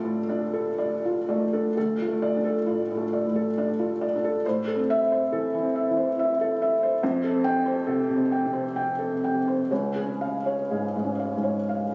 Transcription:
Already playing: D2 A2 A3 D4 F4 A4 D5
0.03 A2
0.29 D4 D5
0.54 A4
0.78 D5
1.05 F4
1.29 A3 D5
1.53 D4 A4
1.77 D2 A4
2.02 F4
2.07 A3
2.22 D5
2.37 D4
2.44 A4
2.66 A2 F4
2.91 A2
2.97 A3
3.13 D5
3.26 A2
3.36 A4
3.58 D4 D5
3.79 F4
4.01 D5
4.16 D4
4.24 A4
4.46 A2 C5
4.68 A4
4.75 C4
4.90 E5
5.12 C5
5.32 E3 A4
5.54 E3
5.62 C4
5.76 E5
5.90 E3
5.97 C5
6.19 E5
6.41 A4
6.62 E5
6.83 C5
7.03 F2 C5
7.24 A4
7.31 C4
7.44 G5
7.66 C5
7.87 C3 A4
8.09 C3
8.16 C4
8.32 G5
8.46 C3
8.53 C5
8.76 G5
8.99 A4
9.24 G5
9.48 C5
9.71 C#2 C#5
9.96 G#4
10.03 C#4
10.21 F5
10.46 C#5
10.71 G#2 G#4
10.96 G#2
11.04 C#4
11.19 F5
11.36 G#2
11.43 C#5
11.69 F5

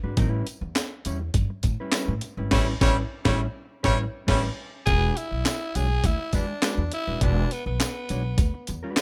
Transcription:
0.03 G#1 G#3 D4 F#4 B4
0.17 A1 F#3 C4 D#4 A#4, kick, closed hi-hat, tambourine
0.29 G3 C#4 E4 B4
0.47 closed hi-hat, tambourine
0.61 E2, muted clean electric guitar stroke
0.75 muted clean electric guitar stroke, snare, clap, closed hi-hat, tambourine
1.05 E2 G3 C#4 E4 C#5, closed hi-hat, tambourine
1.21 muted clean electric guitar stroke
1.34 G2, muted clean electric guitar stroke, kick, closed hi-hat, tambourine
1.50 muted clean electric guitar stroke
1.63 A2, kick, closed hi-hat, tambourine
1.80 G3 C#4 E4 B4
1.92 G3 C#4 E4 B4, snare, clap, closed hi-hat, tambourine
2.08 A2
2.21 muted clean electric guitar stroke, closed hi-hat, tambourine
2.37 G#1 G3 C#4 E4 B4
2.51 A1 G3 C#4 E4 B4 C#5, kick, snare, crash
2.81 A1 G3 C#4 E4 B4 C#5, kick, snare
3.25 A1 G3 C#4 E4 C#5, kick, snare
3.83 A1 G3 C#4 E4 B4 C#5, kick, snare
4.27 A1 G3 C#4 E4 B4 C#5, kick, snare, crash
4.86 E1 G3 C#4 F4 G#4 A#4, kick, closed hi-hat
4.97 G#3 D4 F#4 B4
5.17 E4, closed hi-hat, tambourine
5.31 B1, muted clean electric guitar stroke
5.45 muted clean electric guitar stroke, snare, clap, closed hi-hat, tambourine
5.75 B1 G#3 D4 F#4 G#4 C#5, closed hi-hat, tambourine
5.90 muted clean electric guitar stroke
6.04 D2 E4, kick, closed hi-hat, tambourine
6.19 muted clean electric guitar stroke
6.33 E2 G#3 D4 F#4 B4, kick, closed hi-hat, tambourine
6.48 muted clean electric guitar stroke
6.62 G#3 D4 F#4 B4, snare, clap, closed hi-hat, tambourine
6.78 E2
6.92 E4, muted clean electric guitar stroke, closed hi-hat
7.07 D#1 G#3 D4 F#4 B4
7.21 E1 G#3 D4 F#4 B4, kick, closed hi-hat
7.51 B3, closed hi-hat, tambourine
7.66 B1 B3, muted clean electric guitar stroke
7.80 muted clean electric guitar stroke, snare, clap, closed hi-hat, tambourine
8.09 B1 G#3 D4 F#4 C#5, closed hi-hat, tambourine
8.25 muted clean electric guitar stroke
8.38 D2, muted clean electric guitar stroke, kick, closed hi-hat, tambourine
8.54 muted clean electric guitar stroke
8.67 E2, closed hi-hat, tambourine
8.83 G#3 D4 F#4 B4
8.97 G#3 D4 F#4 B4, snare, clap, closed hi-hat, tambourine

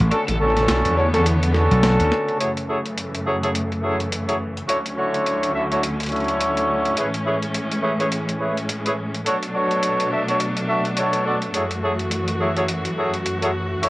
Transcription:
Already playing: A3
0.00 A1
0.11 D3 B3 C#4 D4 F#4 A4, closed hi-hat
0.28 A1 A4, closed hi-hat
0.40 C#4 D4 F#4 A4
0.57 snare, closed hi-hat
0.69 B1, snare, closed hi-hat
0.85 E2, closed hi-hat
0.97 C#4 D4 F#4 C#5
1.13 C#4 D4 F#4 A4, snare, closed hi-hat
1.26 closed hi-hat
1.43 closed hi-hat
1.54 C#4 D4 F#4 A4, snare
1.71 B1, closed hi-hat
1.83 snare, closed hi-hat
2.00 D2, closed hi-hat
2.12 snare
2.28 closed hi-hat
2.39 F#2 C#3 E3 F#3 A3 E4 G#4 A4 C#5, closed hi-hat
2.57 closed hi-hat
2.68 F#3 E4 G#4 A4 C#5
2.86 closed hi-hat
2.98 closed hi-hat
3.14 closed hi-hat
3.26 F#3 E4 G#4 A4 C#5
3.43 F#3 E4 G#4 A4 C#5, closed hi-hat
3.55 closed hi-hat
3.72 closed hi-hat
3.83 F#3 E4 G#4 A4 C#5
4.00 closed hi-hat
4.12 closed hi-hat
4.28 F#3 E4 G#4 A4 C#5, closed hi-hat
4.57 closed hi-hat
4.68 D2 D3 F#3 C#4 E4 F#4 A4 C#5, closed hi-hat
4.86 closed hi-hat
4.97 D3 E4 F#4 A4 C#5
5.14 closed hi-hat
5.26 closed hi-hat
5.43 closed hi-hat
5.54 D3 E4 F#4 A4 E5
5.71 D3 E4 F#4 A4 C#5, closed hi-hat
5.83 closed hi-hat
6.00 closed hi-hat
6.03 closed hi-hat
6.06 closed hi-hat
6.09 D3 E4 F#4 A4 C#5, closed hi-hat
6.12 closed hi-hat
6.16 closed hi-hat
6.20 closed hi-hat
6.24 closed hi-hat
6.28 closed hi-hat
6.41 closed hi-hat
6.57 closed hi-hat
6.86 closed hi-hat
6.97 A2 E3 G#3 A3 E4 G#4 B4 C#5, closed hi-hat
7.14 closed hi-hat
7.26 A3 E4 G#4 B4 C#5
7.42 closed hi-hat
7.54 closed hi-hat
7.71 closed hi-hat
7.83 A3 E4 G#4 B4 C#5
7.99 A3 E4 G#4 B4 C#5, closed hi-hat
8.12 closed hi-hat
8.28 closed hi-hat
8.40 A3 E4 G#4 B4 C#5
8.57 closed hi-hat
8.69 closed hi-hat
8.85 A3 E4 G#4 B4 C#5, closed hi-hat
9.14 closed hi-hat
9.26 B2 F#3 A3 D4 F#4 A4 C#5, closed hi-hat
9.42 closed hi-hat
9.54 B2 D4 F#4 A4 C#5
9.71 closed hi-hat
9.83 closed hi-hat
10.00 closed hi-hat
10.11 B2 D4 F#4 A4 E5
10.28 B2 D4 F#4 A4 C#5, closed hi-hat
10.40 closed hi-hat
10.57 closed hi-hat
10.68 B2 D4 F#4 A4 E5
10.85 closed hi-hat
10.97 B2 D4 F#4 A4 C#5, closed hi-hat
11.13 closed hi-hat
11.26 B2 D4 F#4 A4 D5
11.42 closed hi-hat
11.54 F#2 E3 F#3 E4 F#4 G#4 A4 C#5, closed hi-hat
11.71 closed hi-hat
11.83 F#3 E4 G#4 A4 C#5
11.99 closed hi-hat
12.11 closed hi-hat
12.28 closed hi-hat
12.40 F#3 E4 G#4 A4 C#5
12.57 F#3 E4 G#4 A4 C#5, closed hi-hat
12.68 closed hi-hat
12.85 closed hi-hat
12.97 F#3 E4 G#4 A4 C#5
13.14 closed hi-hat
13.26 closed hi-hat
13.43 F#3 E4 G#4 A4 C#5, closed hi-hat
13.83 D2 D3 C#4 E4 F#4 A4 C#5, closed hi-hat

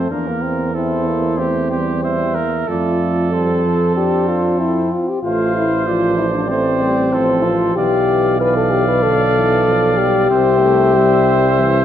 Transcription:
Already playing: A4
0.11 E2 A#3 D4 A#4
0.28 A#3
0.42 C4
0.74 C4 E4 A4 C5
1.08 A#3
1.38 A3 C4 G4
1.71 G3 G4
2.03 G3 C5 E5
2.35 A#3 A#4
2.68 F2 A3 F4 A4 D5
3.33 G3 A4 C5
3.65 F3
3.95 D4 G4 C5
4.28 F4
4.59 C4 E4
4.92 F4
5.09 G4
5.23 A1 A3 F4 C5 F5
5.55 E4
5.87 F3 F4 D5
6.17 E4
6.34 D4
6.48 A3 C4 C5
6.82 G3
7.13 F3 A4 C5
7.43 F4
7.75 B1 E3 G4 D5 F5
8.40 B4 D5 F5
8.57 A4
8.71 G4
8.88 B4
9.03 D3 A4
9.36 E3
9.67 F3
9.97 G3 G4
10.30 C2 C4 C5 E5
10.63 A3
10.96 G3
11.59 E3

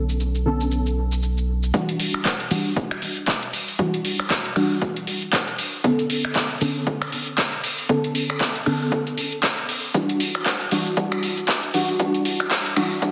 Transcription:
Already playing: B1 D3 B3 C#4 A4
0.09 shaker
0.20 shaker
0.35 shaker
0.46 D3 B3 C#4 A4
0.61 shaker
0.71 shaker
0.86 shaker
1.12 shaker
1.23 shaker
1.38 shaker
1.63 shaker
1.74 E3 G3 D4 F#4, kick, closed hi-hat
1.89 closed hi-hat
2.00 open hi-hat
2.14 finger snap
2.25 kick, clap, closed hi-hat
2.40 closed hi-hat
2.51 E3 G3 D4 F#4, open hi-hat
2.76 kick, closed hi-hat
2.91 finger snap, closed hi-hat
3.02 open hi-hat
3.17 closed hi-hat
3.28 kick, clap, closed hi-hat
3.43 closed hi-hat
3.53 open hi-hat
3.68 open hi-hat
3.79 E3 G3 D4 F#4, kick, closed hi-hat
3.94 closed hi-hat
4.05 open hi-hat
4.20 finger snap
4.30 kick, clap, closed hi-hat
4.45 closed hi-hat
4.56 E3 G3 D4 F#4, finger snap, open hi-hat
4.82 kick, closed hi-hat
4.96 closed hi-hat
5.07 open hi-hat
5.22 closed hi-hat
5.33 kick, clap, closed hi-hat
5.48 closed hi-hat
5.59 open hi-hat
5.84 D3 B3 C#4 A4, kick, closed hi-hat
5.99 closed hi-hat
6.10 open hi-hat
6.25 finger snap
6.35 kick, clap, closed hi-hat
6.50 closed hi-hat
6.61 D3 B3 C#4 A4, open hi-hat
6.87 kick, closed hi-hat
7.02 finger snap, closed hi-hat
7.12 open hi-hat
7.27 closed hi-hat
7.38 kick, clap, closed hi-hat
7.53 closed hi-hat
7.64 open hi-hat
7.79 open hi-hat
7.89 D3 B3 C#4 A4, kick, closed hi-hat
8.04 closed hi-hat
8.15 open hi-hat
8.30 finger snap
8.41 kick, clap, closed hi-hat
8.55 closed hi-hat
8.66 D3 B3 C#4 A4, finger snap, open hi-hat
8.92 kick, closed hi-hat
9.07 closed hi-hat
9.18 open hi-hat
9.32 closed hi-hat
9.43 kick, clap, closed hi-hat
9.58 closed hi-hat
9.69 open hi-hat
9.94 E3 G3 D4 F#4, kick, closed hi-hat, shaker
10.09 closed hi-hat, shaker
10.20 open hi-hat
10.35 finger snap, shaker
10.46 kick, clap, closed hi-hat, shaker
10.61 closed hi-hat, shaker
10.71 E3 G3 D4 F#4, open hi-hat
10.86 shaker
10.97 E3 G3 D4 F#4, kick, closed hi-hat, shaker
11.12 finger snap, closed hi-hat, shaker
11.23 open hi-hat
11.38 closed hi-hat, shaker
11.48 kick, clap, closed hi-hat, shaker
11.63 closed hi-hat, shaker
11.74 E3 G3 D4 F#4, open hi-hat
11.89 open hi-hat, shaker
12.00 E3 G3 D4 F#4, kick, closed hi-hat, shaker
12.14 closed hi-hat, shaker
12.25 open hi-hat
12.40 finger snap, shaker
12.51 kick, clap, closed hi-hat, shaker
12.66 closed hi-hat, shaker
12.76 E3 G3 D4 F#4, finger snap, open hi-hat
12.91 shaker
13.02 E3 G3 D4 F#4, kick, closed hi-hat, shaker

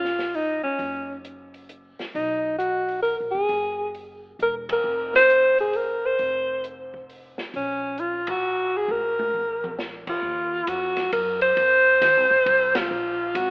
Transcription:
Already playing: A#1 F4
0.04 snare
0.19 snare, open hi-hat
0.34 D#4, open hi-hat
0.63 C#4, muted upright bass stroke
0.79 F#1, kick, open hi-hat
1.25 closed hi-hat
1.54 open hi-hat
1.69 closed hi-hat
1.99 muted upright bass stroke, snare, open hi-hat
2.15 B1 D#4, kick, open hi-hat
2.58 F#4, closed hi-hat
2.89 open hi-hat
3.02 A#4, open hi-hat
3.20 A#1
3.31 F1 G#4
3.49 F#1, kick, open hi-hat
3.95 open hi-hat
4.39 E1 A#4, closed hi-hat
4.69 A#4, kick, ride
4.84 F1
5.14 C5, snare
5.30 closed hi-hat
5.58 G#4, open hi-hat
5.73 A#4, open hi-hat
6.06 C5
6.19 F1, kick, open hi-hat
6.64 closed hi-hat
6.94 kick
7.10 open hi-hat
7.38 muted upright bass stroke, snare
7.54 A#1 C#4, kick, open hi-hat
7.98 F4, closed hi-hat
8.27 F#4, kick, ride
8.77 G#4
8.88 A#1 A#4, high tom
9.19 high tom
9.34 mid tom
9.64 mid tom
9.79 snare
10.07 F4, muted upright bass stroke, kick, crash
10.22 D#2, kick
10.67 F2 F#4, kick, hi-hat pedal, ride
10.97 snare, ride
11.12 F#2 A#4, kick, ride
11.41 C5, ride
11.57 F2, kick, ride
12.01 D#2, kick, snare, hi-hat pedal, ride
12.17 C2
12.31 A1, kick
12.46 C2, kick, ride
12.75 F4, snare, ride
12.91 A#1
13.35 G#1 F#4, kick, hi-hat pedal, ride

